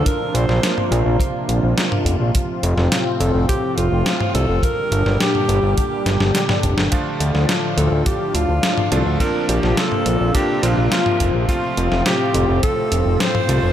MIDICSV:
0, 0, Header, 1, 6, 480
1, 0, Start_track
1, 0, Tempo, 571429
1, 50, Time_signature, 4, 2, 24, 8
1, 11532, End_track
2, 0, Start_track
2, 0, Title_t, "Alto saxophone"
2, 0, Program_c, 0, 65
2, 52, Note_on_c, 0, 70, 107
2, 291, Note_on_c, 0, 72, 100
2, 304, Note_off_c, 0, 70, 0
2, 771, Note_off_c, 0, 72, 0
2, 2690, Note_on_c, 0, 69, 88
2, 2913, Note_off_c, 0, 69, 0
2, 2928, Note_on_c, 0, 67, 94
2, 3171, Note_on_c, 0, 65, 91
2, 3183, Note_off_c, 0, 67, 0
2, 3648, Note_off_c, 0, 65, 0
2, 3653, Note_on_c, 0, 69, 95
2, 3892, Note_on_c, 0, 70, 113
2, 3905, Note_off_c, 0, 69, 0
2, 4371, Note_on_c, 0, 67, 98
2, 4383, Note_off_c, 0, 70, 0
2, 4847, Note_off_c, 0, 67, 0
2, 4852, Note_on_c, 0, 67, 85
2, 5298, Note_off_c, 0, 67, 0
2, 6535, Note_on_c, 0, 69, 86
2, 6775, Note_on_c, 0, 67, 89
2, 6787, Note_off_c, 0, 69, 0
2, 7014, Note_on_c, 0, 65, 88
2, 7027, Note_off_c, 0, 67, 0
2, 7492, Note_on_c, 0, 69, 85
2, 7505, Note_off_c, 0, 65, 0
2, 7727, Note_off_c, 0, 69, 0
2, 7732, Note_on_c, 0, 70, 100
2, 7954, Note_off_c, 0, 70, 0
2, 7971, Note_on_c, 0, 67, 84
2, 8210, Note_on_c, 0, 69, 98
2, 8223, Note_off_c, 0, 67, 0
2, 8689, Note_on_c, 0, 67, 93
2, 8702, Note_off_c, 0, 69, 0
2, 8929, Note_on_c, 0, 65, 84
2, 8942, Note_off_c, 0, 67, 0
2, 9166, Note_off_c, 0, 65, 0
2, 9171, Note_on_c, 0, 65, 93
2, 9505, Note_off_c, 0, 65, 0
2, 9650, Note_on_c, 0, 65, 100
2, 10097, Note_off_c, 0, 65, 0
2, 10129, Note_on_c, 0, 67, 98
2, 10576, Note_off_c, 0, 67, 0
2, 10608, Note_on_c, 0, 69, 107
2, 11091, Note_on_c, 0, 72, 114
2, 11103, Note_off_c, 0, 69, 0
2, 11532, Note_off_c, 0, 72, 0
2, 11532, End_track
3, 0, Start_track
3, 0, Title_t, "Electric grand piano"
3, 0, Program_c, 1, 2
3, 5810, Note_on_c, 1, 53, 76
3, 5810, Note_on_c, 1, 57, 69
3, 5810, Note_on_c, 1, 62, 69
3, 5810, Note_on_c, 1, 65, 80
3, 7461, Note_off_c, 1, 53, 0
3, 7461, Note_off_c, 1, 57, 0
3, 7461, Note_off_c, 1, 62, 0
3, 7461, Note_off_c, 1, 65, 0
3, 7491, Note_on_c, 1, 53, 79
3, 7491, Note_on_c, 1, 57, 71
3, 7491, Note_on_c, 1, 62, 75
3, 7491, Note_on_c, 1, 65, 87
3, 7702, Note_off_c, 1, 53, 0
3, 7702, Note_off_c, 1, 57, 0
3, 7702, Note_off_c, 1, 62, 0
3, 7702, Note_off_c, 1, 65, 0
3, 7732, Note_on_c, 1, 53, 91
3, 7732, Note_on_c, 1, 58, 84
3, 7732, Note_on_c, 1, 60, 86
3, 7732, Note_on_c, 1, 62, 101
3, 8662, Note_off_c, 1, 53, 0
3, 8662, Note_off_c, 1, 58, 0
3, 8662, Note_off_c, 1, 60, 0
3, 8662, Note_off_c, 1, 62, 0
3, 8691, Note_on_c, 1, 53, 80
3, 8691, Note_on_c, 1, 58, 74
3, 8691, Note_on_c, 1, 60, 73
3, 8691, Note_on_c, 1, 62, 92
3, 8902, Note_off_c, 1, 53, 0
3, 8902, Note_off_c, 1, 58, 0
3, 8902, Note_off_c, 1, 60, 0
3, 8902, Note_off_c, 1, 62, 0
3, 8931, Note_on_c, 1, 53, 88
3, 8931, Note_on_c, 1, 58, 80
3, 8931, Note_on_c, 1, 60, 81
3, 8931, Note_on_c, 1, 62, 96
3, 9622, Note_off_c, 1, 53, 0
3, 9622, Note_off_c, 1, 58, 0
3, 9622, Note_off_c, 1, 60, 0
3, 9622, Note_off_c, 1, 62, 0
3, 9651, Note_on_c, 1, 53, 73
3, 9651, Note_on_c, 1, 57, 68
3, 9651, Note_on_c, 1, 60, 69
3, 9651, Note_on_c, 1, 65, 82
3, 11302, Note_off_c, 1, 53, 0
3, 11302, Note_off_c, 1, 57, 0
3, 11302, Note_off_c, 1, 60, 0
3, 11302, Note_off_c, 1, 65, 0
3, 11330, Note_on_c, 1, 57, 74
3, 11330, Note_on_c, 1, 65, 91
3, 11331, Note_on_c, 1, 53, 82
3, 11331, Note_on_c, 1, 60, 75
3, 11532, Note_off_c, 1, 53, 0
3, 11532, Note_off_c, 1, 57, 0
3, 11532, Note_off_c, 1, 60, 0
3, 11532, Note_off_c, 1, 65, 0
3, 11532, End_track
4, 0, Start_track
4, 0, Title_t, "Analog synth pad"
4, 0, Program_c, 2, 89
4, 0, Note_on_c, 2, 53, 72
4, 0, Note_on_c, 2, 62, 70
4, 51, Note_on_c, 2, 48, 79
4, 51, Note_on_c, 2, 58, 71
4, 51, Note_on_c, 2, 65, 86
4, 1937, Note_off_c, 2, 62, 0
4, 1938, Note_off_c, 2, 53, 0
4, 1952, Note_off_c, 2, 58, 0
4, 1970, Note_on_c, 2, 53, 73
4, 1971, Note_on_c, 2, 45, 79
4, 1971, Note_on_c, 2, 60, 71
4, 3857, Note_off_c, 2, 48, 0
4, 3857, Note_off_c, 2, 65, 0
4, 3871, Note_off_c, 2, 45, 0
4, 3871, Note_off_c, 2, 53, 0
4, 3871, Note_off_c, 2, 60, 0
4, 3891, Note_on_c, 2, 55, 72
4, 3891, Note_on_c, 2, 67, 84
4, 3892, Note_on_c, 2, 46, 76
4, 3892, Note_on_c, 2, 50, 72
4, 3892, Note_on_c, 2, 62, 72
4, 5791, Note_off_c, 2, 55, 0
4, 5792, Note_off_c, 2, 46, 0
4, 5792, Note_off_c, 2, 67, 0
4, 5810, Note_on_c, 2, 65, 84
4, 5811, Note_on_c, 2, 45, 79
4, 5811, Note_on_c, 2, 53, 72
4, 7698, Note_off_c, 2, 50, 0
4, 7711, Note_off_c, 2, 45, 0
4, 7731, Note_on_c, 2, 58, 70
4, 7733, Note_on_c, 2, 48, 77
4, 9618, Note_off_c, 2, 62, 0
4, 9631, Note_off_c, 2, 58, 0
4, 9649, Note_on_c, 2, 45, 77
4, 9650, Note_on_c, 2, 60, 69
4, 11532, Note_off_c, 2, 45, 0
4, 11532, Note_off_c, 2, 48, 0
4, 11532, Note_off_c, 2, 53, 0
4, 11532, Note_off_c, 2, 60, 0
4, 11532, Note_off_c, 2, 65, 0
4, 11532, End_track
5, 0, Start_track
5, 0, Title_t, "Analog synth bass"
5, 0, Program_c, 3, 38
5, 290, Note_on_c, 3, 34, 94
5, 385, Note_off_c, 3, 34, 0
5, 410, Note_on_c, 3, 34, 80
5, 506, Note_off_c, 3, 34, 0
5, 769, Note_on_c, 3, 34, 94
5, 865, Note_off_c, 3, 34, 0
5, 889, Note_on_c, 3, 34, 84
5, 985, Note_off_c, 3, 34, 0
5, 1249, Note_on_c, 3, 34, 88
5, 1345, Note_off_c, 3, 34, 0
5, 1371, Note_on_c, 3, 34, 79
5, 1466, Note_off_c, 3, 34, 0
5, 1722, Note_on_c, 3, 29, 93
5, 1822, Note_off_c, 3, 29, 0
5, 1851, Note_on_c, 3, 34, 77
5, 1946, Note_off_c, 3, 34, 0
5, 2210, Note_on_c, 3, 29, 92
5, 2306, Note_off_c, 3, 29, 0
5, 2330, Note_on_c, 3, 29, 79
5, 2426, Note_off_c, 3, 29, 0
5, 2690, Note_on_c, 3, 29, 92
5, 2786, Note_off_c, 3, 29, 0
5, 2810, Note_on_c, 3, 29, 83
5, 2906, Note_off_c, 3, 29, 0
5, 3171, Note_on_c, 3, 29, 89
5, 3266, Note_off_c, 3, 29, 0
5, 3291, Note_on_c, 3, 29, 77
5, 3386, Note_off_c, 3, 29, 0
5, 3651, Note_on_c, 3, 36, 94
5, 3746, Note_off_c, 3, 36, 0
5, 3771, Note_on_c, 3, 29, 76
5, 3866, Note_off_c, 3, 29, 0
5, 4130, Note_on_c, 3, 31, 90
5, 4226, Note_off_c, 3, 31, 0
5, 4250, Note_on_c, 3, 31, 80
5, 4346, Note_off_c, 3, 31, 0
5, 4609, Note_on_c, 3, 31, 90
5, 4705, Note_off_c, 3, 31, 0
5, 4730, Note_on_c, 3, 31, 82
5, 4825, Note_off_c, 3, 31, 0
5, 5090, Note_on_c, 3, 31, 88
5, 5186, Note_off_c, 3, 31, 0
5, 5209, Note_on_c, 3, 31, 79
5, 5305, Note_off_c, 3, 31, 0
5, 5576, Note_on_c, 3, 29, 94
5, 5669, Note_off_c, 3, 29, 0
5, 5689, Note_on_c, 3, 31, 79
5, 5785, Note_off_c, 3, 31, 0
5, 6050, Note_on_c, 3, 38, 92
5, 6146, Note_off_c, 3, 38, 0
5, 6170, Note_on_c, 3, 38, 79
5, 6266, Note_off_c, 3, 38, 0
5, 6530, Note_on_c, 3, 38, 91
5, 6626, Note_off_c, 3, 38, 0
5, 6650, Note_on_c, 3, 38, 81
5, 6746, Note_off_c, 3, 38, 0
5, 7011, Note_on_c, 3, 38, 86
5, 7106, Note_off_c, 3, 38, 0
5, 7131, Note_on_c, 3, 38, 79
5, 7226, Note_off_c, 3, 38, 0
5, 7492, Note_on_c, 3, 36, 93
5, 7587, Note_off_c, 3, 36, 0
5, 7610, Note_on_c, 3, 38, 79
5, 7706, Note_off_c, 3, 38, 0
5, 7971, Note_on_c, 3, 34, 94
5, 8066, Note_off_c, 3, 34, 0
5, 8092, Note_on_c, 3, 34, 80
5, 8187, Note_off_c, 3, 34, 0
5, 8451, Note_on_c, 3, 34, 93
5, 8546, Note_off_c, 3, 34, 0
5, 8571, Note_on_c, 3, 34, 81
5, 8666, Note_off_c, 3, 34, 0
5, 8930, Note_on_c, 3, 34, 90
5, 9026, Note_off_c, 3, 34, 0
5, 9050, Note_on_c, 3, 34, 77
5, 9146, Note_off_c, 3, 34, 0
5, 9411, Note_on_c, 3, 29, 92
5, 9506, Note_off_c, 3, 29, 0
5, 9530, Note_on_c, 3, 34, 77
5, 9626, Note_off_c, 3, 34, 0
5, 9890, Note_on_c, 3, 29, 95
5, 9986, Note_off_c, 3, 29, 0
5, 10010, Note_on_c, 3, 29, 78
5, 10106, Note_off_c, 3, 29, 0
5, 10370, Note_on_c, 3, 29, 94
5, 10466, Note_off_c, 3, 29, 0
5, 10490, Note_on_c, 3, 29, 79
5, 10586, Note_off_c, 3, 29, 0
5, 10850, Note_on_c, 3, 29, 91
5, 10946, Note_off_c, 3, 29, 0
5, 10970, Note_on_c, 3, 29, 80
5, 11066, Note_off_c, 3, 29, 0
5, 11330, Note_on_c, 3, 36, 93
5, 11426, Note_off_c, 3, 36, 0
5, 11451, Note_on_c, 3, 29, 79
5, 11532, Note_off_c, 3, 29, 0
5, 11532, End_track
6, 0, Start_track
6, 0, Title_t, "Drums"
6, 52, Note_on_c, 9, 36, 108
6, 52, Note_on_c, 9, 42, 81
6, 136, Note_off_c, 9, 36, 0
6, 136, Note_off_c, 9, 42, 0
6, 293, Note_on_c, 9, 42, 60
6, 377, Note_off_c, 9, 42, 0
6, 412, Note_on_c, 9, 38, 34
6, 496, Note_off_c, 9, 38, 0
6, 532, Note_on_c, 9, 38, 105
6, 532, Note_on_c, 9, 42, 84
6, 616, Note_off_c, 9, 38, 0
6, 616, Note_off_c, 9, 42, 0
6, 652, Note_on_c, 9, 47, 59
6, 736, Note_off_c, 9, 47, 0
6, 772, Note_on_c, 9, 42, 58
6, 856, Note_off_c, 9, 42, 0
6, 1005, Note_on_c, 9, 36, 109
6, 1011, Note_on_c, 9, 42, 86
6, 1089, Note_off_c, 9, 36, 0
6, 1095, Note_off_c, 9, 42, 0
6, 1251, Note_on_c, 9, 42, 58
6, 1335, Note_off_c, 9, 42, 0
6, 1492, Note_on_c, 9, 38, 113
6, 1492, Note_on_c, 9, 42, 85
6, 1576, Note_off_c, 9, 38, 0
6, 1576, Note_off_c, 9, 42, 0
6, 1612, Note_on_c, 9, 47, 94
6, 1696, Note_off_c, 9, 47, 0
6, 1722, Note_on_c, 9, 36, 58
6, 1732, Note_on_c, 9, 42, 60
6, 1806, Note_off_c, 9, 36, 0
6, 1816, Note_off_c, 9, 42, 0
6, 1972, Note_on_c, 9, 42, 86
6, 1976, Note_on_c, 9, 36, 102
6, 2056, Note_off_c, 9, 42, 0
6, 2060, Note_off_c, 9, 36, 0
6, 2212, Note_on_c, 9, 42, 59
6, 2296, Note_off_c, 9, 42, 0
6, 2332, Note_on_c, 9, 38, 33
6, 2416, Note_off_c, 9, 38, 0
6, 2452, Note_on_c, 9, 38, 104
6, 2452, Note_on_c, 9, 42, 84
6, 2536, Note_off_c, 9, 38, 0
6, 2536, Note_off_c, 9, 42, 0
6, 2693, Note_on_c, 9, 42, 60
6, 2777, Note_off_c, 9, 42, 0
6, 2932, Note_on_c, 9, 42, 86
6, 2934, Note_on_c, 9, 36, 97
6, 3016, Note_off_c, 9, 42, 0
6, 3018, Note_off_c, 9, 36, 0
6, 3172, Note_on_c, 9, 42, 59
6, 3256, Note_off_c, 9, 42, 0
6, 3411, Note_on_c, 9, 38, 109
6, 3411, Note_on_c, 9, 42, 89
6, 3495, Note_off_c, 9, 38, 0
6, 3495, Note_off_c, 9, 42, 0
6, 3532, Note_on_c, 9, 47, 89
6, 3616, Note_off_c, 9, 47, 0
6, 3652, Note_on_c, 9, 42, 61
6, 3736, Note_off_c, 9, 42, 0
6, 3888, Note_on_c, 9, 36, 101
6, 3892, Note_on_c, 9, 42, 89
6, 3972, Note_off_c, 9, 36, 0
6, 3976, Note_off_c, 9, 42, 0
6, 4132, Note_on_c, 9, 42, 62
6, 4216, Note_off_c, 9, 42, 0
6, 4252, Note_on_c, 9, 38, 33
6, 4336, Note_off_c, 9, 38, 0
6, 4372, Note_on_c, 9, 38, 106
6, 4372, Note_on_c, 9, 42, 89
6, 4456, Note_off_c, 9, 38, 0
6, 4456, Note_off_c, 9, 42, 0
6, 4493, Note_on_c, 9, 47, 56
6, 4577, Note_off_c, 9, 47, 0
6, 4612, Note_on_c, 9, 42, 61
6, 4696, Note_off_c, 9, 42, 0
6, 4851, Note_on_c, 9, 42, 90
6, 4854, Note_on_c, 9, 36, 99
6, 4935, Note_off_c, 9, 42, 0
6, 4938, Note_off_c, 9, 36, 0
6, 5092, Note_on_c, 9, 38, 58
6, 5092, Note_on_c, 9, 42, 62
6, 5176, Note_off_c, 9, 38, 0
6, 5176, Note_off_c, 9, 42, 0
6, 5212, Note_on_c, 9, 38, 57
6, 5296, Note_off_c, 9, 38, 0
6, 5332, Note_on_c, 9, 38, 74
6, 5332, Note_on_c, 9, 42, 92
6, 5416, Note_off_c, 9, 38, 0
6, 5416, Note_off_c, 9, 42, 0
6, 5452, Note_on_c, 9, 38, 67
6, 5452, Note_on_c, 9, 47, 85
6, 5536, Note_off_c, 9, 38, 0
6, 5536, Note_off_c, 9, 47, 0
6, 5572, Note_on_c, 9, 42, 64
6, 5576, Note_on_c, 9, 36, 54
6, 5656, Note_off_c, 9, 42, 0
6, 5660, Note_off_c, 9, 36, 0
6, 5692, Note_on_c, 9, 38, 80
6, 5776, Note_off_c, 9, 38, 0
6, 5811, Note_on_c, 9, 42, 92
6, 5819, Note_on_c, 9, 36, 115
6, 5895, Note_off_c, 9, 42, 0
6, 5903, Note_off_c, 9, 36, 0
6, 6052, Note_on_c, 9, 42, 63
6, 6136, Note_off_c, 9, 42, 0
6, 6172, Note_on_c, 9, 38, 35
6, 6256, Note_off_c, 9, 38, 0
6, 6291, Note_on_c, 9, 38, 108
6, 6291, Note_on_c, 9, 42, 90
6, 6375, Note_off_c, 9, 38, 0
6, 6375, Note_off_c, 9, 42, 0
6, 6532, Note_on_c, 9, 42, 64
6, 6616, Note_off_c, 9, 42, 0
6, 6771, Note_on_c, 9, 42, 93
6, 6774, Note_on_c, 9, 36, 121
6, 6855, Note_off_c, 9, 42, 0
6, 6858, Note_off_c, 9, 36, 0
6, 7011, Note_on_c, 9, 42, 64
6, 7095, Note_off_c, 9, 42, 0
6, 7250, Note_on_c, 9, 38, 116
6, 7250, Note_on_c, 9, 42, 95
6, 7334, Note_off_c, 9, 38, 0
6, 7334, Note_off_c, 9, 42, 0
6, 7371, Note_on_c, 9, 47, 85
6, 7455, Note_off_c, 9, 47, 0
6, 7491, Note_on_c, 9, 42, 64
6, 7575, Note_off_c, 9, 42, 0
6, 7729, Note_on_c, 9, 36, 123
6, 7730, Note_on_c, 9, 42, 90
6, 7813, Note_off_c, 9, 36, 0
6, 7814, Note_off_c, 9, 42, 0
6, 7971, Note_on_c, 9, 42, 64
6, 8055, Note_off_c, 9, 42, 0
6, 8091, Note_on_c, 9, 38, 36
6, 8175, Note_off_c, 9, 38, 0
6, 8210, Note_on_c, 9, 38, 115
6, 8210, Note_on_c, 9, 42, 90
6, 8294, Note_off_c, 9, 38, 0
6, 8294, Note_off_c, 9, 42, 0
6, 8330, Note_on_c, 9, 47, 55
6, 8414, Note_off_c, 9, 47, 0
6, 8449, Note_on_c, 9, 42, 64
6, 8533, Note_off_c, 9, 42, 0
6, 8691, Note_on_c, 9, 42, 96
6, 8692, Note_on_c, 9, 36, 109
6, 8775, Note_off_c, 9, 42, 0
6, 8776, Note_off_c, 9, 36, 0
6, 8931, Note_on_c, 9, 42, 64
6, 9015, Note_off_c, 9, 42, 0
6, 9170, Note_on_c, 9, 38, 121
6, 9170, Note_on_c, 9, 42, 92
6, 9254, Note_off_c, 9, 38, 0
6, 9254, Note_off_c, 9, 42, 0
6, 9290, Note_on_c, 9, 47, 83
6, 9374, Note_off_c, 9, 47, 0
6, 9410, Note_on_c, 9, 42, 65
6, 9411, Note_on_c, 9, 36, 62
6, 9494, Note_off_c, 9, 42, 0
6, 9495, Note_off_c, 9, 36, 0
6, 9648, Note_on_c, 9, 36, 118
6, 9650, Note_on_c, 9, 42, 89
6, 9732, Note_off_c, 9, 36, 0
6, 9734, Note_off_c, 9, 42, 0
6, 9890, Note_on_c, 9, 42, 64
6, 9974, Note_off_c, 9, 42, 0
6, 10010, Note_on_c, 9, 38, 37
6, 10094, Note_off_c, 9, 38, 0
6, 10129, Note_on_c, 9, 38, 115
6, 10129, Note_on_c, 9, 42, 88
6, 10213, Note_off_c, 9, 38, 0
6, 10213, Note_off_c, 9, 42, 0
6, 10369, Note_on_c, 9, 42, 62
6, 10453, Note_off_c, 9, 42, 0
6, 10610, Note_on_c, 9, 42, 90
6, 10613, Note_on_c, 9, 36, 111
6, 10694, Note_off_c, 9, 42, 0
6, 10697, Note_off_c, 9, 36, 0
6, 10851, Note_on_c, 9, 42, 63
6, 10935, Note_off_c, 9, 42, 0
6, 11091, Note_on_c, 9, 38, 123
6, 11091, Note_on_c, 9, 42, 93
6, 11175, Note_off_c, 9, 38, 0
6, 11175, Note_off_c, 9, 42, 0
6, 11211, Note_on_c, 9, 47, 87
6, 11295, Note_off_c, 9, 47, 0
6, 11331, Note_on_c, 9, 42, 62
6, 11415, Note_off_c, 9, 42, 0
6, 11532, End_track
0, 0, End_of_file